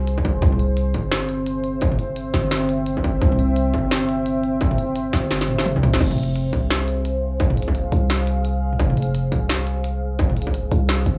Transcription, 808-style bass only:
Already playing: C2
0.42 C2
0.95 G1
2.34 G1
3.22 C2
3.74 G1
5.13 G1
5.83 C2
6.01 F1
6.53 C2
7.92 C2
8.79 F1
9.32 C2
10.72 C2
11.06 G1

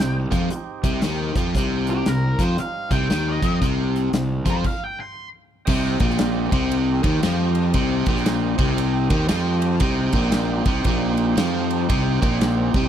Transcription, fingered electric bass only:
0.00 C2
0.32 F2
0.51 muted fingered electric bass stroke
0.84 C2
1.03 D#2
1.36 F2
1.55 C2
2.06 C2
2.39 F2
2.59 muted fingered electric bass stroke
2.91 C2
3.12 D#2
3.43 F2
3.62 C2
4.13 C2
4.45 F2
5.68 C2
6.00 A#1
6.52 C2
7.04 D#2
7.24 F2
7.74 C2
8.07 A#1
8.59 C2
9.10 D#2
9.31 F2
9.81 C2
10.13 A#1
10.66 C2
10.85 A#1
11.37 F2
11.90 C2
12.22 A#1
12.74 C2

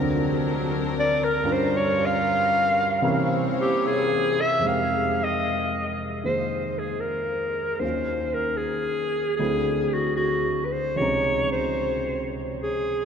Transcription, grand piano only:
Already playing: D2 D3 F#3 C4 F4 A#4
1.44 G2 G3 C#4 F4 A#4
3.02 C3 E3 C#4 E4 A#4
4.59 F2 C3
4.63 G#3 D#4
4.68 A#4 G5
6.24 D#3 A#3 F4 G#4 C5
7.79 D#2 D#3 F#3 C#4
7.85 F4
9.39 D2 D3 F#3 A3 C4 E4
10.96 C#2 C#3 F3
11.00 C3 D#4

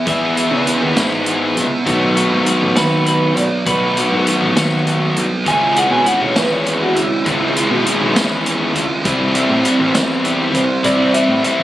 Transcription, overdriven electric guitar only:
0.06 E3 G#3 B3 E4
0.35 E3 G#3 B3 E4
0.66 E3 G#3 B3 E4
0.97 E3 G#3 B3 E4
1.26 E3 G#3 B3 E4
1.86 D#3 A3 B3 F#4
2.16 D#3 A3 B3 F#4
2.45 D#3 A3 B3 F#4
2.75 D#3 A3 B3 F#4
3.05 D#3 A3 B3 F#4
3.66 D#3 A3 B3 F#4
3.96 D#3 A3 B3 F#4
4.26 D#3 A3 B3 F#4
4.56 D#3 A3 B3 F#4
4.85 D#3 A3 B3 F#4
5.45 E3 G#3 C#4 E4
5.76 E3 G#3 C#4 E4
6.05 E3 G#3 C#4 E4
6.36 E3 G#3 C#4 E4
6.65 E3 G#3 C#4 E4
7.25 E3 G#3 C#4 E4
7.55 E3 G#3 C#4 E4
7.85 E3 G#3 C#4 E4
8.16 E3 G#3 C#4 E4
8.45 E3 G#3 C#4 E4
9.04 E3 G3 C4 E4
9.35 E3 G3 C4 E4
9.64 E3 G3 C4 E4
9.94 E3 G3 C4 E4
10.23 E3 G3 C4 E4
10.83 E3 G3 C4 E4
11.14 E3 G3 C4 E4
11.43 E3 G3 C4 E4

